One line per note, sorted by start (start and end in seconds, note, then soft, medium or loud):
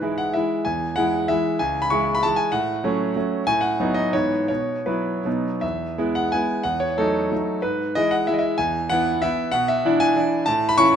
0.00 0.35 G#2 soft
0.00 0.31 E3 medium
0.00 0.31 G#3 medium
0.00 0.32 E4 medium
0.00 0.17 B4 medium
0.18 0.34 F#5 medium
0.34 0.63 E3 soft
0.34 0.63 G#3 soft
0.34 0.63 E4 soft
0.34 0.66 E5 medium
0.65 0.96 E2 soft
0.65 0.97 G#5 medium
0.96 1.25 E3 medium
0.96 1.26 G#3 medium
0.96 1.26 E4 medium
0.96 1.28 F#5 medium
1.28 1.57 E3 soft
1.28 1.57 G#3 soft
1.28 1.57 E4 soft
1.28 1.59 E5 medium
1.59 1.90 C#2 medium
1.59 1.83 G#5 medium
1.82 1.90 B5 medium
1.90 2.20 E3 medium
1.90 2.20 G#3 medium
1.90 2.20 E4 medium
1.90 2.15 C#6 medium
2.15 2.23 B5 medium
2.23 2.50 E3 soft
2.23 2.51 G#3 medium
2.23 2.51 E4 soft
2.23 2.38 A5 medium
2.36 2.52 G#5 medium
2.52 2.83 A2 medium
2.52 3.46 F#5 medium
2.84 3.13 F#3 medium
2.84 3.13 A3 medium
2.84 3.14 C#4 medium
3.16 3.44 F#3 soft
3.16 3.44 A3 soft
3.16 3.44 C#4 medium
3.47 3.78 A2 medium
3.47 3.62 G#5 loud
3.61 3.95 F#5 medium
3.80 4.10 F#3 medium
3.80 4.11 B3 medium
3.80 4.11 D#4 medium
3.94 4.12 D#5 medium
4.13 4.49 G#2 medium
4.13 4.46 E3 soft
4.13 4.47 B3 soft
4.13 4.47 E4 soft
4.13 4.47 C#5 medium
4.48 4.87 B2 soft
4.48 4.87 C#5 medium
4.86 5.22 F#3 medium
4.86 5.23 B3 soft
4.86 5.23 E4 medium
4.86 5.44 B4 medium
5.25 5.62 B2 medium
5.25 5.59 F#3 soft
5.25 5.59 B3 soft
5.25 5.60 D#4 soft
5.61 5.97 E2 soft
5.61 6.15 E5 medium
5.98 6.29 G#3 soft
5.98 6.29 B3 medium
5.98 6.30 E4 medium
6.15 6.32 F#5 medium
6.32 6.62 G#3 soft
6.32 6.62 B3 soft
6.32 6.62 E4 soft
6.32 6.64 G#5 medium
6.63 6.97 E2 medium
6.63 6.80 F#5 medium
6.80 6.98 C#5 medium
6.98 7.29 F#3 medium
6.98 7.29 A3 medium
6.98 7.29 D#4 medium
6.98 7.63 A4 medium
7.32 7.60 F#3 soft
7.32 7.60 A3 soft
7.32 7.61 D#4 soft
7.62 7.95 G#2 medium
7.62 7.95 B4 medium
7.95 8.25 E3 medium
7.95 8.26 G#3 medium
7.95 8.26 E4 medium
7.95 8.12 D#5 medium
8.11 8.28 F#5 medium
8.27 8.56 E3 soft
8.27 8.56 G#3 medium
8.27 8.57 E4 medium
8.27 8.34 E5 medium
8.34 8.40 D#5 medium
8.39 8.59 E5 medium
8.58 8.90 E2 medium
8.58 8.90 G#5 medium
8.89 9.20 E3 medium
8.89 9.20 B3 medium
8.89 9.20 E4 medium
8.89 9.22 F#5 loud
9.22 9.50 E3 soft
9.22 9.51 B3 medium
9.22 9.51 E4 medium
9.22 9.53 E5 medium
9.52 9.84 B2 medium
9.52 9.68 F#5 loud
9.68 10.01 E5 medium
9.85 10.14 E3 medium
9.85 10.14 D4 medium
9.85 10.14 E4 medium
10.00 10.46 G#5 loud
10.16 10.43 E3 medium
10.16 10.44 D4 medium
10.16 10.44 E4 medium
10.46 10.77 A2 medium
10.46 10.70 A5 loud
10.69 10.77 B5 loud
10.78 10.96 E3 medium
10.78 10.96 C#4 medium
10.78 10.96 E4 medium
10.78 10.96 C#6 loud